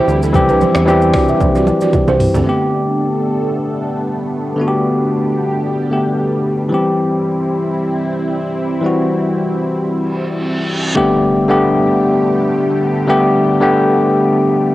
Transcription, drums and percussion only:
0, 0, Header, 1, 2, 480
1, 0, Start_track
1, 0, Key_signature, 1, "major"
1, 0, Tempo, 530973
1, 308, Time_signature, 4, 2, 24, 8
1, 13332, End_track
2, 0, Start_track
2, 0, Title_t, "Drums"
2, 75, Note_on_c, 9, 82, 64
2, 165, Note_off_c, 9, 82, 0
2, 204, Note_on_c, 9, 82, 96
2, 295, Note_off_c, 9, 82, 0
2, 309, Note_on_c, 9, 36, 112
2, 310, Note_on_c, 9, 82, 76
2, 320, Note_on_c, 9, 64, 71
2, 399, Note_off_c, 9, 36, 0
2, 400, Note_off_c, 9, 82, 0
2, 410, Note_off_c, 9, 64, 0
2, 441, Note_on_c, 9, 45, 97
2, 442, Note_on_c, 9, 82, 54
2, 532, Note_off_c, 9, 45, 0
2, 533, Note_off_c, 9, 82, 0
2, 551, Note_on_c, 9, 82, 61
2, 557, Note_on_c, 9, 64, 79
2, 641, Note_off_c, 9, 82, 0
2, 647, Note_off_c, 9, 64, 0
2, 675, Note_on_c, 9, 37, 114
2, 676, Note_on_c, 9, 26, 92
2, 683, Note_on_c, 9, 82, 94
2, 691, Note_on_c, 9, 61, 79
2, 766, Note_off_c, 9, 26, 0
2, 766, Note_off_c, 9, 37, 0
2, 773, Note_off_c, 9, 82, 0
2, 781, Note_off_c, 9, 61, 0
2, 795, Note_on_c, 9, 60, 78
2, 796, Note_on_c, 9, 82, 73
2, 886, Note_off_c, 9, 60, 0
2, 887, Note_off_c, 9, 82, 0
2, 919, Note_on_c, 9, 82, 59
2, 1010, Note_off_c, 9, 82, 0
2, 1026, Note_on_c, 9, 46, 69
2, 1026, Note_on_c, 9, 82, 51
2, 1027, Note_on_c, 9, 37, 92
2, 1028, Note_on_c, 9, 26, 73
2, 1031, Note_on_c, 9, 36, 84
2, 1031, Note_on_c, 9, 45, 95
2, 1117, Note_off_c, 9, 46, 0
2, 1117, Note_off_c, 9, 82, 0
2, 1118, Note_off_c, 9, 26, 0
2, 1118, Note_off_c, 9, 37, 0
2, 1122, Note_off_c, 9, 36, 0
2, 1122, Note_off_c, 9, 45, 0
2, 1160, Note_on_c, 9, 82, 88
2, 1250, Note_off_c, 9, 82, 0
2, 1269, Note_on_c, 9, 64, 82
2, 1270, Note_on_c, 9, 36, 99
2, 1271, Note_on_c, 9, 48, 64
2, 1271, Note_on_c, 9, 82, 92
2, 1359, Note_off_c, 9, 64, 0
2, 1361, Note_off_c, 9, 36, 0
2, 1361, Note_off_c, 9, 48, 0
2, 1361, Note_off_c, 9, 82, 0
2, 1403, Note_on_c, 9, 82, 58
2, 1493, Note_off_c, 9, 82, 0
2, 1509, Note_on_c, 9, 61, 76
2, 1510, Note_on_c, 9, 47, 71
2, 1513, Note_on_c, 9, 82, 56
2, 1599, Note_off_c, 9, 61, 0
2, 1600, Note_off_c, 9, 47, 0
2, 1603, Note_off_c, 9, 82, 0
2, 1636, Note_on_c, 9, 82, 99
2, 1640, Note_on_c, 9, 47, 72
2, 1726, Note_off_c, 9, 82, 0
2, 1730, Note_off_c, 9, 47, 0
2, 1745, Note_on_c, 9, 82, 74
2, 1748, Note_on_c, 9, 36, 97
2, 1748, Note_on_c, 9, 45, 90
2, 1754, Note_on_c, 9, 60, 75
2, 1835, Note_off_c, 9, 82, 0
2, 1838, Note_off_c, 9, 36, 0
2, 1838, Note_off_c, 9, 45, 0
2, 1845, Note_off_c, 9, 60, 0
2, 1878, Note_on_c, 9, 82, 41
2, 1879, Note_on_c, 9, 61, 89
2, 1968, Note_off_c, 9, 82, 0
2, 1970, Note_off_c, 9, 61, 0
2, 1988, Note_on_c, 9, 43, 109
2, 1992, Note_on_c, 9, 46, 89
2, 1992, Note_on_c, 9, 82, 62
2, 2079, Note_off_c, 9, 43, 0
2, 2082, Note_off_c, 9, 46, 0
2, 2082, Note_off_c, 9, 82, 0
2, 2120, Note_on_c, 9, 43, 98
2, 2122, Note_on_c, 9, 82, 94
2, 2210, Note_off_c, 9, 43, 0
2, 2212, Note_off_c, 9, 82, 0
2, 13332, End_track
0, 0, End_of_file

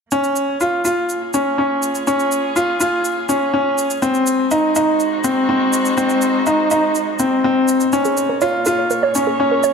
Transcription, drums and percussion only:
0, 0, Header, 1, 2, 480
1, 0, Start_track
1, 0, Key_signature, -5, "minor"
1, 0, Tempo, 487805
1, 120, Time_signature, 4, 2, 24, 8
1, 9577, End_track
2, 0, Start_track
2, 0, Title_t, "Drums"
2, 115, Note_on_c, 9, 82, 31
2, 213, Note_off_c, 9, 82, 0
2, 235, Note_on_c, 9, 82, 23
2, 333, Note_off_c, 9, 82, 0
2, 354, Note_on_c, 9, 82, 47
2, 452, Note_off_c, 9, 82, 0
2, 596, Note_on_c, 9, 82, 29
2, 694, Note_off_c, 9, 82, 0
2, 836, Note_on_c, 9, 82, 45
2, 935, Note_off_c, 9, 82, 0
2, 1077, Note_on_c, 9, 82, 30
2, 1175, Note_off_c, 9, 82, 0
2, 1317, Note_on_c, 9, 82, 48
2, 1415, Note_off_c, 9, 82, 0
2, 1798, Note_on_c, 9, 82, 51
2, 1896, Note_off_c, 9, 82, 0
2, 1918, Note_on_c, 9, 82, 33
2, 2016, Note_off_c, 9, 82, 0
2, 2039, Note_on_c, 9, 82, 35
2, 2138, Note_off_c, 9, 82, 0
2, 2161, Note_on_c, 9, 82, 24
2, 2260, Note_off_c, 9, 82, 0
2, 2280, Note_on_c, 9, 82, 50
2, 2379, Note_off_c, 9, 82, 0
2, 2521, Note_on_c, 9, 82, 34
2, 2620, Note_off_c, 9, 82, 0
2, 2760, Note_on_c, 9, 82, 51
2, 2858, Note_off_c, 9, 82, 0
2, 3000, Note_on_c, 9, 82, 34
2, 3098, Note_off_c, 9, 82, 0
2, 3240, Note_on_c, 9, 82, 53
2, 3338, Note_off_c, 9, 82, 0
2, 3721, Note_on_c, 9, 82, 49
2, 3820, Note_off_c, 9, 82, 0
2, 3842, Note_on_c, 9, 82, 36
2, 3940, Note_off_c, 9, 82, 0
2, 3960, Note_on_c, 9, 82, 36
2, 4058, Note_off_c, 9, 82, 0
2, 4078, Note_on_c, 9, 82, 23
2, 4177, Note_off_c, 9, 82, 0
2, 4198, Note_on_c, 9, 82, 54
2, 4296, Note_off_c, 9, 82, 0
2, 4440, Note_on_c, 9, 82, 35
2, 4539, Note_off_c, 9, 82, 0
2, 4678, Note_on_c, 9, 82, 46
2, 4777, Note_off_c, 9, 82, 0
2, 4920, Note_on_c, 9, 82, 35
2, 5018, Note_off_c, 9, 82, 0
2, 5158, Note_on_c, 9, 82, 54
2, 5257, Note_off_c, 9, 82, 0
2, 5638, Note_on_c, 9, 82, 55
2, 5737, Note_off_c, 9, 82, 0
2, 5760, Note_on_c, 9, 82, 38
2, 5858, Note_off_c, 9, 82, 0
2, 5881, Note_on_c, 9, 82, 37
2, 5980, Note_off_c, 9, 82, 0
2, 5998, Note_on_c, 9, 82, 25
2, 6096, Note_off_c, 9, 82, 0
2, 6118, Note_on_c, 9, 82, 52
2, 6216, Note_off_c, 9, 82, 0
2, 6360, Note_on_c, 9, 82, 31
2, 6459, Note_off_c, 9, 82, 0
2, 6600, Note_on_c, 9, 82, 47
2, 6699, Note_off_c, 9, 82, 0
2, 6840, Note_on_c, 9, 82, 34
2, 6938, Note_off_c, 9, 82, 0
2, 7078, Note_on_c, 9, 82, 55
2, 7176, Note_off_c, 9, 82, 0
2, 7559, Note_on_c, 9, 82, 53
2, 7657, Note_off_c, 9, 82, 0
2, 7679, Note_on_c, 9, 82, 37
2, 7778, Note_off_c, 9, 82, 0
2, 7800, Note_on_c, 9, 82, 36
2, 7898, Note_off_c, 9, 82, 0
2, 7922, Note_on_c, 9, 82, 25
2, 8020, Note_off_c, 9, 82, 0
2, 8041, Note_on_c, 9, 82, 50
2, 8140, Note_off_c, 9, 82, 0
2, 8279, Note_on_c, 9, 82, 32
2, 8378, Note_off_c, 9, 82, 0
2, 8517, Note_on_c, 9, 82, 48
2, 8615, Note_off_c, 9, 82, 0
2, 8763, Note_on_c, 9, 82, 34
2, 8861, Note_off_c, 9, 82, 0
2, 9002, Note_on_c, 9, 82, 54
2, 9100, Note_off_c, 9, 82, 0
2, 9481, Note_on_c, 9, 82, 53
2, 9577, Note_off_c, 9, 82, 0
2, 9577, End_track
0, 0, End_of_file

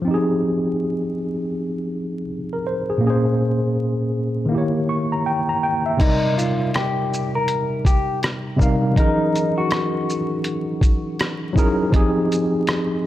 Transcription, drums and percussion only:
0, 0, Header, 1, 2, 480
1, 0, Start_track
1, 0, Key_signature, -3, "minor"
1, 0, Tempo, 740741
1, 48, Time_signature, 4, 2, 24, 8
1, 8466, End_track
2, 0, Start_track
2, 0, Title_t, "Drums"
2, 3886, Note_on_c, 9, 49, 80
2, 3887, Note_on_c, 9, 36, 108
2, 3893, Note_on_c, 9, 42, 67
2, 3951, Note_off_c, 9, 49, 0
2, 3952, Note_off_c, 9, 36, 0
2, 3958, Note_off_c, 9, 42, 0
2, 4140, Note_on_c, 9, 42, 42
2, 4140, Note_on_c, 9, 82, 44
2, 4205, Note_off_c, 9, 42, 0
2, 4205, Note_off_c, 9, 82, 0
2, 4370, Note_on_c, 9, 42, 57
2, 4378, Note_on_c, 9, 37, 104
2, 4434, Note_off_c, 9, 42, 0
2, 4443, Note_off_c, 9, 37, 0
2, 4625, Note_on_c, 9, 82, 46
2, 4690, Note_off_c, 9, 82, 0
2, 4847, Note_on_c, 9, 42, 80
2, 4911, Note_off_c, 9, 42, 0
2, 5086, Note_on_c, 9, 36, 90
2, 5096, Note_on_c, 9, 42, 48
2, 5096, Note_on_c, 9, 82, 50
2, 5151, Note_off_c, 9, 36, 0
2, 5161, Note_off_c, 9, 42, 0
2, 5161, Note_off_c, 9, 82, 0
2, 5332, Note_on_c, 9, 42, 62
2, 5340, Note_on_c, 9, 37, 97
2, 5397, Note_off_c, 9, 42, 0
2, 5405, Note_off_c, 9, 37, 0
2, 5569, Note_on_c, 9, 36, 79
2, 5580, Note_on_c, 9, 82, 47
2, 5633, Note_off_c, 9, 36, 0
2, 5645, Note_off_c, 9, 82, 0
2, 5808, Note_on_c, 9, 36, 101
2, 5815, Note_on_c, 9, 42, 68
2, 5873, Note_off_c, 9, 36, 0
2, 5880, Note_off_c, 9, 42, 0
2, 6062, Note_on_c, 9, 42, 41
2, 6062, Note_on_c, 9, 82, 40
2, 6127, Note_off_c, 9, 42, 0
2, 6127, Note_off_c, 9, 82, 0
2, 6290, Note_on_c, 9, 42, 54
2, 6298, Note_on_c, 9, 37, 115
2, 6355, Note_off_c, 9, 42, 0
2, 6363, Note_off_c, 9, 37, 0
2, 6543, Note_on_c, 9, 82, 46
2, 6608, Note_off_c, 9, 82, 0
2, 6767, Note_on_c, 9, 42, 74
2, 6832, Note_off_c, 9, 42, 0
2, 7007, Note_on_c, 9, 36, 89
2, 7016, Note_on_c, 9, 42, 46
2, 7016, Note_on_c, 9, 82, 46
2, 7072, Note_off_c, 9, 36, 0
2, 7081, Note_off_c, 9, 42, 0
2, 7081, Note_off_c, 9, 82, 0
2, 7254, Note_on_c, 9, 42, 65
2, 7262, Note_on_c, 9, 37, 106
2, 7319, Note_off_c, 9, 42, 0
2, 7327, Note_off_c, 9, 37, 0
2, 7489, Note_on_c, 9, 36, 86
2, 7501, Note_on_c, 9, 82, 50
2, 7554, Note_off_c, 9, 36, 0
2, 7566, Note_off_c, 9, 82, 0
2, 7728, Note_on_c, 9, 36, 117
2, 7735, Note_on_c, 9, 42, 73
2, 7793, Note_off_c, 9, 36, 0
2, 7800, Note_off_c, 9, 42, 0
2, 7983, Note_on_c, 9, 42, 42
2, 7983, Note_on_c, 9, 82, 40
2, 8048, Note_off_c, 9, 42, 0
2, 8048, Note_off_c, 9, 82, 0
2, 8212, Note_on_c, 9, 42, 59
2, 8220, Note_on_c, 9, 37, 109
2, 8277, Note_off_c, 9, 42, 0
2, 8285, Note_off_c, 9, 37, 0
2, 8466, End_track
0, 0, End_of_file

